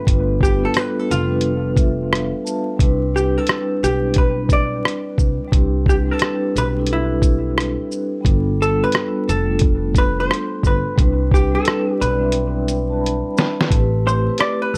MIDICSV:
0, 0, Header, 1, 5, 480
1, 0, Start_track
1, 0, Key_signature, 0, "major"
1, 0, Tempo, 681818
1, 48, Time_signature, 4, 2, 24, 8
1, 10403, End_track
2, 0, Start_track
2, 0, Title_t, "Hollow-body jazz guitar"
2, 0, Program_c, 0, 26
2, 302, Note_on_c, 0, 67, 84
2, 439, Note_off_c, 0, 67, 0
2, 457, Note_on_c, 0, 69, 85
2, 543, Note_off_c, 0, 69, 0
2, 543, Note_on_c, 0, 71, 100
2, 700, Note_off_c, 0, 71, 0
2, 700, Note_on_c, 0, 69, 95
2, 779, Note_off_c, 0, 69, 0
2, 785, Note_on_c, 0, 65, 86
2, 1708, Note_off_c, 0, 65, 0
2, 2223, Note_on_c, 0, 67, 66
2, 2377, Note_off_c, 0, 67, 0
2, 2377, Note_on_c, 0, 69, 80
2, 2695, Note_off_c, 0, 69, 0
2, 2702, Note_on_c, 0, 67, 82
2, 2942, Note_off_c, 0, 67, 0
2, 2943, Note_on_c, 0, 71, 93
2, 3183, Note_off_c, 0, 71, 0
2, 3188, Note_on_c, 0, 74, 97
2, 3630, Note_off_c, 0, 74, 0
2, 4149, Note_on_c, 0, 67, 80
2, 4188, Note_off_c, 0, 67, 0
2, 4304, Note_on_c, 0, 69, 91
2, 4628, Note_off_c, 0, 69, 0
2, 4634, Note_on_c, 0, 71, 99
2, 4695, Note_off_c, 0, 71, 0
2, 4877, Note_on_c, 0, 64, 84
2, 5554, Note_off_c, 0, 64, 0
2, 6069, Note_on_c, 0, 69, 84
2, 6217, Note_off_c, 0, 69, 0
2, 6221, Note_on_c, 0, 71, 101
2, 6542, Note_on_c, 0, 69, 82
2, 6547, Note_off_c, 0, 71, 0
2, 6759, Note_off_c, 0, 69, 0
2, 7028, Note_on_c, 0, 71, 96
2, 7163, Note_off_c, 0, 71, 0
2, 7181, Note_on_c, 0, 72, 105
2, 7507, Note_off_c, 0, 72, 0
2, 7511, Note_on_c, 0, 71, 79
2, 7724, Note_off_c, 0, 71, 0
2, 7983, Note_on_c, 0, 67, 77
2, 8128, Note_off_c, 0, 67, 0
2, 8130, Note_on_c, 0, 69, 90
2, 8458, Note_on_c, 0, 71, 94
2, 8462, Note_off_c, 0, 69, 0
2, 9385, Note_off_c, 0, 71, 0
2, 9906, Note_on_c, 0, 72, 85
2, 10135, Note_off_c, 0, 72, 0
2, 10138, Note_on_c, 0, 74, 98
2, 10292, Note_off_c, 0, 74, 0
2, 10292, Note_on_c, 0, 71, 87
2, 10376, Note_off_c, 0, 71, 0
2, 10376, Note_on_c, 0, 69, 83
2, 10403, Note_off_c, 0, 69, 0
2, 10403, End_track
3, 0, Start_track
3, 0, Title_t, "Vibraphone"
3, 0, Program_c, 1, 11
3, 0, Control_c, 1, 64, 127
3, 0, Note_on_c, 1, 55, 68
3, 0, Note_on_c, 1, 57, 70
3, 0, Note_on_c, 1, 62, 65
3, 0, Note_on_c, 1, 65, 65
3, 0, Note_on_c, 1, 69, 71
3, 34, Note_off_c, 1, 55, 0
3, 34, Note_on_c, 1, 55, 83
3, 46, Note_on_c, 1, 59, 71
3, 58, Note_off_c, 1, 62, 0
3, 58, Note_on_c, 1, 62, 70
3, 66, Note_off_c, 1, 65, 0
3, 66, Note_on_c, 1, 65, 82
3, 78, Note_on_c, 1, 71, 92
3, 314, Note_off_c, 1, 55, 0
3, 319, Note_off_c, 1, 59, 0
3, 325, Note_off_c, 1, 62, 0
3, 329, Note_off_c, 1, 65, 0
3, 335, Note_off_c, 1, 71, 0
3, 404, Note_on_c, 1, 55, 82
3, 415, Note_on_c, 1, 59, 86
3, 425, Note_on_c, 1, 62, 72
3, 436, Note_on_c, 1, 65, 82
3, 448, Note_off_c, 1, 69, 0
3, 448, Note_on_c, 1, 69, 105
3, 744, Note_off_c, 1, 55, 0
3, 750, Note_off_c, 1, 59, 0
3, 755, Note_off_c, 1, 62, 0
3, 760, Note_off_c, 1, 65, 0
3, 766, Note_off_c, 1, 69, 0
3, 889, Note_on_c, 1, 55, 93
3, 899, Note_on_c, 1, 59, 73
3, 909, Note_on_c, 1, 62, 75
3, 922, Note_on_c, 1, 65, 78
3, 932, Note_on_c, 1, 71, 93
3, 1258, Note_on_c, 1, 76, 64
3, 1477, Note_off_c, 1, 76, 0
3, 1487, Note_on_c, 1, 77, 63
3, 1609, Note_off_c, 1, 55, 0
3, 1614, Note_off_c, 1, 59, 0
3, 1619, Note_off_c, 1, 62, 0
3, 1625, Note_off_c, 1, 65, 0
3, 1630, Note_off_c, 1, 71, 0
3, 1711, Note_off_c, 1, 77, 0
3, 1721, Note_on_c, 1, 81, 68
3, 1945, Note_on_c, 1, 55, 89
3, 1948, Note_off_c, 1, 81, 0
3, 1956, Note_on_c, 1, 60, 78
3, 1967, Note_on_c, 1, 62, 78
3, 1978, Control_c, 1, 64, 0
3, 1979, Note_on_c, 1, 64, 76
3, 1981, Note_off_c, 1, 57, 0
3, 1987, Note_on_c, 1, 71, 101
3, 2101, Control_c, 1, 64, 127
3, 2229, Note_off_c, 1, 55, 0
3, 2234, Note_off_c, 1, 60, 0
3, 2240, Note_off_c, 1, 62, 0
3, 2246, Note_off_c, 1, 64, 0
3, 2250, Note_off_c, 1, 71, 0
3, 2332, Note_on_c, 1, 55, 75
3, 2343, Note_on_c, 1, 60, 67
3, 2355, Note_on_c, 1, 62, 69
3, 2364, Note_on_c, 1, 64, 75
3, 2375, Note_on_c, 1, 71, 83
3, 2668, Note_off_c, 1, 55, 0
3, 2674, Note_off_c, 1, 60, 0
3, 2679, Note_off_c, 1, 62, 0
3, 2684, Note_off_c, 1, 64, 0
3, 2689, Note_off_c, 1, 71, 0
3, 2817, Note_on_c, 1, 55, 65
3, 2828, Note_on_c, 1, 60, 60
3, 2840, Note_on_c, 1, 62, 66
3, 2851, Note_on_c, 1, 64, 61
3, 2860, Note_on_c, 1, 71, 71
3, 3533, Note_off_c, 1, 55, 0
3, 3539, Note_off_c, 1, 60, 0
3, 3545, Note_off_c, 1, 62, 0
3, 3550, Note_off_c, 1, 64, 0
3, 3554, Note_off_c, 1, 71, 0
3, 3858, Note_on_c, 1, 55, 90
3, 3869, Note_on_c, 1, 60, 75
3, 3879, Note_on_c, 1, 62, 77
3, 3892, Note_on_c, 1, 64, 84
3, 3901, Note_on_c, 1, 67, 88
3, 4145, Note_off_c, 1, 55, 0
3, 4151, Note_off_c, 1, 60, 0
3, 4156, Note_off_c, 1, 62, 0
3, 4162, Note_off_c, 1, 64, 0
3, 4167, Note_off_c, 1, 67, 0
3, 4262, Note_on_c, 1, 55, 89
3, 4274, Note_on_c, 1, 60, 76
3, 4285, Note_on_c, 1, 62, 83
3, 4295, Note_on_c, 1, 64, 85
3, 4307, Note_on_c, 1, 71, 100
3, 4593, Note_off_c, 1, 55, 0
3, 4599, Note_off_c, 1, 60, 0
3, 4605, Note_off_c, 1, 62, 0
3, 4609, Note_off_c, 1, 64, 0
3, 4616, Note_off_c, 1, 71, 0
3, 4751, Note_on_c, 1, 55, 86
3, 4760, Note_on_c, 1, 60, 74
3, 4774, Note_on_c, 1, 62, 83
3, 4783, Note_on_c, 1, 64, 84
3, 4793, Note_on_c, 1, 69, 83
3, 5460, Note_off_c, 1, 55, 0
3, 5464, Note_off_c, 1, 60, 0
3, 5471, Note_off_c, 1, 62, 0
3, 5476, Note_off_c, 1, 64, 0
3, 5481, Note_off_c, 1, 69, 0
3, 5778, Note_on_c, 1, 55, 91
3, 5790, Note_on_c, 1, 59, 76
3, 5800, Note_on_c, 1, 62, 72
3, 5810, Note_on_c, 1, 65, 76
3, 5816, Control_c, 1, 64, 0
3, 5821, Note_on_c, 1, 69, 97
3, 5960, Control_c, 1, 64, 127
3, 6066, Note_off_c, 1, 55, 0
3, 6072, Note_off_c, 1, 59, 0
3, 6077, Note_off_c, 1, 62, 0
3, 6081, Note_off_c, 1, 65, 0
3, 6087, Note_off_c, 1, 69, 0
3, 6167, Note_on_c, 1, 55, 85
3, 6178, Note_on_c, 1, 59, 66
3, 6189, Note_on_c, 1, 62, 69
3, 6199, Note_on_c, 1, 65, 68
3, 6212, Note_on_c, 1, 69, 80
3, 6505, Note_off_c, 1, 55, 0
3, 6511, Note_off_c, 1, 59, 0
3, 6517, Note_off_c, 1, 62, 0
3, 6521, Note_off_c, 1, 65, 0
3, 6528, Note_off_c, 1, 69, 0
3, 6654, Note_on_c, 1, 55, 76
3, 6666, Note_on_c, 1, 57, 65
3, 6676, Note_on_c, 1, 62, 68
3, 6688, Note_on_c, 1, 65, 63
3, 6697, Note_on_c, 1, 69, 83
3, 7371, Note_off_c, 1, 55, 0
3, 7377, Note_off_c, 1, 57, 0
3, 7382, Note_off_c, 1, 62, 0
3, 7388, Note_off_c, 1, 65, 0
3, 7393, Note_off_c, 1, 69, 0
3, 7714, Note_on_c, 1, 55, 95
3, 7725, Note_on_c, 1, 60, 82
3, 7735, Note_on_c, 1, 62, 80
3, 7737, Control_c, 1, 64, 0
3, 7746, Note_on_c, 1, 64, 78
3, 7757, Note_on_c, 1, 71, 97
3, 7861, Control_c, 1, 64, 127
3, 7993, Note_off_c, 1, 55, 0
3, 7999, Note_off_c, 1, 60, 0
3, 8004, Note_off_c, 1, 62, 0
3, 8009, Note_off_c, 1, 64, 0
3, 8015, Note_off_c, 1, 71, 0
3, 8103, Note_on_c, 1, 55, 98
3, 8114, Note_on_c, 1, 60, 81
3, 8125, Note_on_c, 1, 62, 84
3, 8135, Note_on_c, 1, 64, 85
3, 8146, Note_on_c, 1, 71, 99
3, 8434, Note_off_c, 1, 55, 0
3, 8435, Note_on_c, 1, 74, 72
3, 8439, Note_off_c, 1, 60, 0
3, 8444, Note_off_c, 1, 62, 0
3, 8450, Note_off_c, 1, 64, 0
3, 8455, Note_off_c, 1, 71, 0
3, 8577, Note_on_c, 1, 55, 84
3, 8585, Note_off_c, 1, 74, 0
3, 8586, Note_on_c, 1, 60, 80
3, 8598, Note_on_c, 1, 62, 77
3, 8599, Note_on_c, 1, 76, 68
3, 8609, Note_on_c, 1, 64, 76
3, 8620, Note_on_c, 1, 71, 93
3, 8677, Note_on_c, 1, 79, 68
3, 8680, Note_off_c, 1, 76, 0
3, 8905, Note_off_c, 1, 79, 0
3, 8935, Note_on_c, 1, 79, 74
3, 9075, Note_off_c, 1, 79, 0
3, 9079, Note_on_c, 1, 81, 71
3, 9157, Note_on_c, 1, 83, 65
3, 9160, Note_off_c, 1, 81, 0
3, 9293, Note_off_c, 1, 55, 0
3, 9297, Note_off_c, 1, 60, 0
3, 9303, Note_off_c, 1, 62, 0
3, 9309, Note_off_c, 1, 64, 0
3, 9314, Note_off_c, 1, 71, 0
3, 9385, Note_off_c, 1, 83, 0
3, 9403, Note_on_c, 1, 83, 69
3, 9628, Note_off_c, 1, 83, 0
3, 9640, Note_on_c, 1, 57, 84
3, 9649, Note_on_c, 1, 60, 83
3, 9658, Control_c, 1, 64, 0
3, 9662, Note_on_c, 1, 64, 81
3, 9671, Note_on_c, 1, 67, 80
3, 9683, Note_on_c, 1, 71, 92
3, 9796, Control_c, 1, 64, 127
3, 9916, Note_off_c, 1, 57, 0
3, 9921, Note_off_c, 1, 60, 0
3, 9927, Note_off_c, 1, 64, 0
3, 9932, Note_off_c, 1, 67, 0
3, 9938, Note_off_c, 1, 71, 0
3, 10021, Note_on_c, 1, 57, 79
3, 10031, Note_on_c, 1, 60, 70
3, 10041, Note_on_c, 1, 64, 71
3, 10054, Note_on_c, 1, 67, 73
3, 10063, Note_on_c, 1, 71, 85
3, 10403, Note_off_c, 1, 57, 0
3, 10403, Note_off_c, 1, 60, 0
3, 10403, Note_off_c, 1, 64, 0
3, 10403, Note_off_c, 1, 67, 0
3, 10403, Note_off_c, 1, 71, 0
3, 10403, End_track
4, 0, Start_track
4, 0, Title_t, "Upright bass"
4, 0, Program_c, 2, 32
4, 53, Note_on_c, 2, 31, 102
4, 448, Note_off_c, 2, 31, 0
4, 779, Note_on_c, 2, 29, 99
4, 1620, Note_off_c, 2, 29, 0
4, 1972, Note_on_c, 2, 36, 90
4, 2367, Note_off_c, 2, 36, 0
4, 2695, Note_on_c, 2, 35, 91
4, 3384, Note_off_c, 2, 35, 0
4, 3652, Note_on_c, 2, 36, 87
4, 3778, Note_off_c, 2, 36, 0
4, 3891, Note_on_c, 2, 36, 95
4, 4287, Note_off_c, 2, 36, 0
4, 4616, Note_on_c, 2, 35, 98
4, 5458, Note_off_c, 2, 35, 0
4, 5810, Note_on_c, 2, 31, 100
4, 6206, Note_off_c, 2, 31, 0
4, 6537, Note_on_c, 2, 29, 102
4, 7225, Note_off_c, 2, 29, 0
4, 7490, Note_on_c, 2, 31, 96
4, 7617, Note_off_c, 2, 31, 0
4, 7733, Note_on_c, 2, 36, 101
4, 8127, Note_off_c, 2, 36, 0
4, 8457, Note_on_c, 2, 35, 98
4, 9299, Note_off_c, 2, 35, 0
4, 9655, Note_on_c, 2, 33, 98
4, 10049, Note_off_c, 2, 33, 0
4, 10376, Note_on_c, 2, 31, 96
4, 10403, Note_off_c, 2, 31, 0
4, 10403, End_track
5, 0, Start_track
5, 0, Title_t, "Drums"
5, 48, Note_on_c, 9, 36, 95
5, 55, Note_on_c, 9, 42, 82
5, 118, Note_off_c, 9, 36, 0
5, 126, Note_off_c, 9, 42, 0
5, 286, Note_on_c, 9, 36, 92
5, 312, Note_on_c, 9, 82, 44
5, 357, Note_off_c, 9, 36, 0
5, 382, Note_off_c, 9, 82, 0
5, 522, Note_on_c, 9, 42, 69
5, 540, Note_on_c, 9, 37, 102
5, 592, Note_off_c, 9, 42, 0
5, 611, Note_off_c, 9, 37, 0
5, 784, Note_on_c, 9, 42, 50
5, 784, Note_on_c, 9, 82, 46
5, 854, Note_off_c, 9, 42, 0
5, 854, Note_off_c, 9, 82, 0
5, 992, Note_on_c, 9, 42, 78
5, 1063, Note_off_c, 9, 42, 0
5, 1242, Note_on_c, 9, 36, 96
5, 1248, Note_on_c, 9, 42, 46
5, 1248, Note_on_c, 9, 82, 45
5, 1313, Note_off_c, 9, 36, 0
5, 1318, Note_off_c, 9, 42, 0
5, 1318, Note_off_c, 9, 82, 0
5, 1497, Note_on_c, 9, 37, 113
5, 1516, Note_on_c, 9, 42, 72
5, 1567, Note_off_c, 9, 37, 0
5, 1586, Note_off_c, 9, 42, 0
5, 1736, Note_on_c, 9, 82, 50
5, 1806, Note_off_c, 9, 82, 0
5, 1967, Note_on_c, 9, 36, 100
5, 1974, Note_on_c, 9, 42, 77
5, 2037, Note_off_c, 9, 36, 0
5, 2044, Note_off_c, 9, 42, 0
5, 2231, Note_on_c, 9, 82, 45
5, 2301, Note_off_c, 9, 82, 0
5, 2441, Note_on_c, 9, 42, 74
5, 2459, Note_on_c, 9, 37, 117
5, 2511, Note_off_c, 9, 42, 0
5, 2530, Note_off_c, 9, 37, 0
5, 2702, Note_on_c, 9, 42, 47
5, 2702, Note_on_c, 9, 82, 48
5, 2773, Note_off_c, 9, 42, 0
5, 2773, Note_off_c, 9, 82, 0
5, 2914, Note_on_c, 9, 42, 79
5, 2930, Note_on_c, 9, 36, 92
5, 2984, Note_off_c, 9, 42, 0
5, 3000, Note_off_c, 9, 36, 0
5, 3162, Note_on_c, 9, 36, 90
5, 3166, Note_on_c, 9, 42, 47
5, 3166, Note_on_c, 9, 82, 44
5, 3232, Note_off_c, 9, 36, 0
5, 3237, Note_off_c, 9, 42, 0
5, 3237, Note_off_c, 9, 82, 0
5, 3417, Note_on_c, 9, 37, 110
5, 3436, Note_on_c, 9, 42, 68
5, 3487, Note_off_c, 9, 37, 0
5, 3506, Note_off_c, 9, 42, 0
5, 3646, Note_on_c, 9, 36, 86
5, 3654, Note_on_c, 9, 82, 53
5, 3717, Note_off_c, 9, 36, 0
5, 3724, Note_off_c, 9, 82, 0
5, 3887, Note_on_c, 9, 36, 103
5, 3894, Note_on_c, 9, 42, 83
5, 3958, Note_off_c, 9, 36, 0
5, 3964, Note_off_c, 9, 42, 0
5, 4126, Note_on_c, 9, 36, 91
5, 4152, Note_on_c, 9, 82, 45
5, 4196, Note_off_c, 9, 36, 0
5, 4222, Note_off_c, 9, 82, 0
5, 4360, Note_on_c, 9, 42, 68
5, 4379, Note_on_c, 9, 37, 112
5, 4431, Note_off_c, 9, 42, 0
5, 4449, Note_off_c, 9, 37, 0
5, 4622, Note_on_c, 9, 42, 47
5, 4622, Note_on_c, 9, 82, 50
5, 4692, Note_off_c, 9, 42, 0
5, 4692, Note_off_c, 9, 82, 0
5, 4833, Note_on_c, 9, 42, 79
5, 4903, Note_off_c, 9, 42, 0
5, 5082, Note_on_c, 9, 36, 95
5, 5088, Note_on_c, 9, 42, 44
5, 5088, Note_on_c, 9, 82, 47
5, 5152, Note_off_c, 9, 36, 0
5, 5158, Note_off_c, 9, 42, 0
5, 5158, Note_off_c, 9, 82, 0
5, 5334, Note_on_c, 9, 37, 118
5, 5353, Note_on_c, 9, 42, 70
5, 5405, Note_off_c, 9, 37, 0
5, 5424, Note_off_c, 9, 42, 0
5, 5573, Note_on_c, 9, 82, 49
5, 5644, Note_off_c, 9, 82, 0
5, 5806, Note_on_c, 9, 36, 101
5, 5814, Note_on_c, 9, 42, 79
5, 5877, Note_off_c, 9, 36, 0
5, 5884, Note_off_c, 9, 42, 0
5, 6071, Note_on_c, 9, 82, 44
5, 6141, Note_off_c, 9, 82, 0
5, 6281, Note_on_c, 9, 42, 72
5, 6300, Note_on_c, 9, 37, 113
5, 6351, Note_off_c, 9, 42, 0
5, 6370, Note_off_c, 9, 37, 0
5, 6541, Note_on_c, 9, 42, 49
5, 6541, Note_on_c, 9, 82, 46
5, 6612, Note_off_c, 9, 42, 0
5, 6612, Note_off_c, 9, 82, 0
5, 6752, Note_on_c, 9, 42, 81
5, 6770, Note_on_c, 9, 36, 93
5, 6823, Note_off_c, 9, 42, 0
5, 6840, Note_off_c, 9, 36, 0
5, 7002, Note_on_c, 9, 36, 92
5, 7009, Note_on_c, 9, 42, 49
5, 7009, Note_on_c, 9, 82, 47
5, 7072, Note_off_c, 9, 36, 0
5, 7079, Note_off_c, 9, 42, 0
5, 7079, Note_off_c, 9, 82, 0
5, 7257, Note_on_c, 9, 37, 111
5, 7276, Note_on_c, 9, 42, 70
5, 7327, Note_off_c, 9, 37, 0
5, 7346, Note_off_c, 9, 42, 0
5, 7486, Note_on_c, 9, 36, 89
5, 7493, Note_on_c, 9, 82, 52
5, 7556, Note_off_c, 9, 36, 0
5, 7563, Note_off_c, 9, 82, 0
5, 7727, Note_on_c, 9, 36, 97
5, 7734, Note_on_c, 9, 42, 82
5, 7797, Note_off_c, 9, 36, 0
5, 7804, Note_off_c, 9, 42, 0
5, 7966, Note_on_c, 9, 36, 95
5, 7990, Note_on_c, 9, 82, 43
5, 8036, Note_off_c, 9, 36, 0
5, 8061, Note_off_c, 9, 82, 0
5, 8203, Note_on_c, 9, 42, 70
5, 8221, Note_on_c, 9, 37, 106
5, 8273, Note_off_c, 9, 42, 0
5, 8292, Note_off_c, 9, 37, 0
5, 8462, Note_on_c, 9, 42, 46
5, 8462, Note_on_c, 9, 82, 49
5, 8532, Note_off_c, 9, 42, 0
5, 8532, Note_off_c, 9, 82, 0
5, 8674, Note_on_c, 9, 42, 77
5, 8745, Note_off_c, 9, 42, 0
5, 8929, Note_on_c, 9, 42, 46
5, 8929, Note_on_c, 9, 82, 47
5, 8999, Note_off_c, 9, 42, 0
5, 8999, Note_off_c, 9, 82, 0
5, 9197, Note_on_c, 9, 42, 72
5, 9267, Note_off_c, 9, 42, 0
5, 9416, Note_on_c, 9, 82, 50
5, 9424, Note_on_c, 9, 38, 92
5, 9486, Note_off_c, 9, 82, 0
5, 9494, Note_off_c, 9, 38, 0
5, 9579, Note_on_c, 9, 38, 93
5, 9649, Note_on_c, 9, 36, 97
5, 9650, Note_off_c, 9, 38, 0
5, 9656, Note_on_c, 9, 42, 83
5, 9719, Note_off_c, 9, 36, 0
5, 9726, Note_off_c, 9, 42, 0
5, 9913, Note_on_c, 9, 82, 41
5, 9984, Note_off_c, 9, 82, 0
5, 10122, Note_on_c, 9, 42, 69
5, 10141, Note_on_c, 9, 37, 115
5, 10193, Note_off_c, 9, 42, 0
5, 10211, Note_off_c, 9, 37, 0
5, 10403, End_track
0, 0, End_of_file